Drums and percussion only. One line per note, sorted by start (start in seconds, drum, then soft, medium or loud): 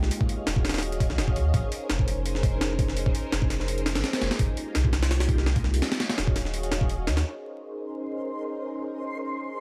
0.03 snare soft
0.11 open hi-hat loud
0.21 kick medium
0.29 open hi-hat medium
0.47 snare loud
0.47 open hi-hat medium
0.56 kick loud
0.65 snare medium
0.65 open hi-hat medium
0.69 snare medium
0.69 open hi-hat medium
0.74 snare medium
0.74 open hi-hat medium
0.78 snare medium
0.78 open hi-hat medium
0.83 open hi-hat medium
0.92 closed hi-hat soft
1.00 kick loud
1.00 open hi-hat medium
1.10 snare soft
1.18 snare loud
1.18 open hi-hat medium
1.28 kick medium
1.36 open hi-hat medium
1.54 kick loud
1.54 open hi-hat medium
1.72 open hi-hat medium
1.90 snare loud
1.90 open hi-hat medium
1.99 kick medium
2.08 open hi-hat medium
2.26 open hi-hat medium
2.35 snare soft
2.43 kick loud
2.43 open hi-hat medium
2.61 snare loud
2.61 open hi-hat medium
2.79 kick medium
2.79 open hi-hat medium
2.89 snare soft
2.97 open hi-hat medium
3.06 kick medium
3.15 open hi-hat medium
3.32 snare loud
3.32 open hi-hat medium
3.42 kick loud
3.50 snare medium
3.50 open hi-hat medium
3.60 snare soft
3.68 open hi-hat medium
3.78 closed hi-hat soft
3.86 snare loud
3.86 open hi-hat medium
3.95 snare loud
3.95 open hi-hat medium
4.04 snare loud
4.04 open hi-hat medium
4.13 snare loud
4.13 open hi-hat medium
4.22 snare loud
4.22 open hi-hat medium
4.31 snare loud
4.31 open hi-hat medium
4.39 kick loud
4.39 open hi-hat loud
4.57 open hi-hat medium
4.75 snare loud
4.75 open hi-hat medium
4.85 kick loud
4.93 snare loud
4.93 open hi-hat medium
5.03 snare loud
5.03 open hi-hat medium
5.11 snare loud
5.11 open hi-hat medium
5.20 snare loud
5.20 open hi-hat medium
5.29 kick medium
5.29 open hi-hat medium
5.38 snare soft
5.46 snare loud
5.56 kick medium
5.56 open hi-hat medium
5.64 snare soft
5.74 open hi-hat medium
5.82 snare loud
5.82 open hi-hat medium
5.92 snare loud
5.92 open hi-hat medium
6.00 snare loud
6.00 open hi-hat medium
6.10 snare loud
6.10 open hi-hat medium
6.18 snare loud
6.18 open hi-hat medium
6.28 kick loud
6.36 snare medium
6.36 open hi-hat medium
6.45 snare soft
6.54 open hi-hat medium
6.63 closed hi-hat soft
6.72 snare loud
6.72 open hi-hat medium
6.81 kick medium
6.89 open hi-hat medium
7.07 snare loud
7.07 open hi-hat medium
7.17 snare loud
7.17 open hi-hat medium